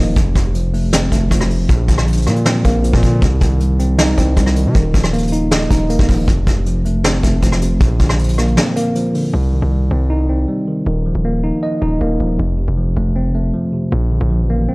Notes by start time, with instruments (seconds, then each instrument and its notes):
Already playing: 808-style bass D#1, tine electric piano D#3 F3 A#3 D#4 D#5
0.16 808-style bass F1, tine electric piano F2, kick, closed hi-hat
0.35 808-style bass F1, tine electric piano C3, kick, closed hi-hat
0.55 tine electric piano F3, closed hi-hat
0.74 tine electric piano A3, open hi-hat
0.93 tine electric piano C4, snare, hi-hat pedal
1.12 808-style bass F1, tine electric piano A3, kick, closed hi-hat
1.31 808-style bass F1, tine electric piano F3, kick, cross-stick, closed hi-hat
1.41 cross-stick
1.50 tine electric piano C3, open hi-hat
1.69 808-style bass A#1, tine electric piano A#2, kick, closed hi-hat
1.88 808-style bass A#1, tine electric piano D3, kick, closed hi-hat
1.98 cross-stick
2.08 tine electric piano F3, closed hi-hat
2.12 closed hi-hat
2.17 closed hi-hat
2.22 closed hi-hat
2.27 808-style bass A#2, tine electric piano A#3, cross-stick, closed hi-hat
2.36 closed hi-hat
2.46 tine electric piano C4, snare
2.65 808-style bass A#1, tine electric piano A#3, kick, closed hi-hat
2.84 tine electric piano F3, closed hi-hat
2.93 808-style bass A#2, kick
3.03 tine electric piano D3, kick, closed hi-hat
3.22 808-style bass C2, tine electric piano C3, kick, closed hi-hat
3.41 808-style bass C2, tine electric piano D#3, kick, closed hi-hat
3.60 tine electric piano G3, closed hi-hat
3.79 tine electric piano C4, closed hi-hat
3.99 tine electric piano D#4, snare
4.18 808-style bass C2, tine electric piano C4, kick, closed hi-hat
4.37 808-style bass C2, tine electric piano G3, kick, cross-stick, closed hi-hat
4.46 cross-stick
4.56 tine electric piano D#3, closed hi-hat
4.65 808-style bass C3
4.75 808-style bass D#1, tine electric piano D#3, kick, closed hi-hat
4.94 808-style bass D#1, tine electric piano F3, kick, closed hi-hat
5.04 cross-stick
5.13 tine electric piano A#3, closed hi-hat
5.18 closed hi-hat
5.23 closed hi-hat
5.28 closed hi-hat
5.32 tine electric piano D#4, closed hi-hat
5.51 tine electric piano D#5, snare
5.70 808-style bass D#1, tine electric piano D#4, kick, closed hi-hat
5.89 tine electric piano A#3, closed hi-hat
5.99 808-style bass D#1, kick
6.09 tine electric piano F3, kick, open hi-hat
6.28 808-style bass F1, tine electric piano F2, kick, closed hi-hat
6.47 808-style bass F1, tine electric piano C3, kick, closed hi-hat
6.66 tine electric piano F3, closed hi-hat
6.85 tine electric piano A3, closed hi-hat
7.04 tine electric piano C4, snare
7.23 808-style bass F1, tine electric piano A3, kick, closed hi-hat
7.43 808-style bass F1, tine electric piano F3, kick, closed hi-hat
7.52 cross-stick
7.61 tine electric piano C3, closed hi-hat
7.81 808-style bass A#1, tine electric piano A#2, kick, closed hi-hat
8.00 808-style bass A#1, tine electric piano D3, kick, closed hi-hat
8.09 cross-stick
8.19 tine electric piano F3, closed hi-hat
8.24 closed hi-hat
8.28 closed hi-hat
8.33 closed hi-hat
8.38 tine electric piano A#3, cross-stick, closed hi-hat
8.48 closed hi-hat
8.57 tine electric piano C4, snare
8.76 tine electric piano A#3, closed hi-hat
8.95 tine electric piano F3, closed hi-hat
9.14 tine electric piano D3, open hi-hat
9.34 808-style bass C2, tine electric piano C3
9.53 tine electric piano D#3
9.62 808-style bass C2
9.72 tine electric piano G3
9.91 808-style bass C2, tine electric piano C4
10.10 tine electric piano D#4
10.29 tine electric piano C4
10.48 tine electric piano G3
10.67 tine electric piano D#3
10.86 808-style bass D#1, tine electric piano D#3
11.06 tine electric piano F3
11.15 808-style bass D#1
11.25 tine electric piano A#3
11.44 tine electric piano D#4
11.63 tine electric piano D#5
11.82 808-style bass D#1, tine electric piano D#4
12.01 808-style bass D#1, tine electric piano A#3
12.20 808-style bass D#1, tine electric piano F3
12.39 808-style bass F1, tine electric piano F2
12.58 tine electric piano C3
12.68 808-style bass F1
12.77 tine electric piano F3
12.97 808-style bass F1, tine electric piano A3
13.16 tine electric piano C4
13.35 tine electric piano A3
13.54 tine electric piano F3
13.73 tine electric piano C3
13.92 808-style bass A#1, tine electric piano A#2
14.12 tine electric piano D3
14.21 808-style bass A#1
14.31 tine electric piano F3
14.40 808-style bass A1
14.50 tine electric piano A#3
14.69 tine electric piano C4